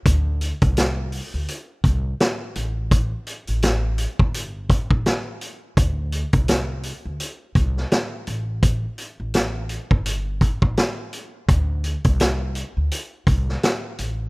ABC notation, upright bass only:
X:1
M:4/4
L:1/16
Q:"Swing 16ths" 1/4=84
K:Cmix
V:1 name="Upright bass" clef=bass
D,,3 C,,4 D,, z2 C,,2 z2 A,,,2- | A,,,2 z A,,,4 G,,,4 A,,, z4 | D,,3 C,,4 D,, z2 C,,2 z2 A,,,2- | A,,,2 z A,,,4 G,,,4 A,,, z4 |
D,,3 C,,4 D,, z2 C,,2 z2 A,,,2 |]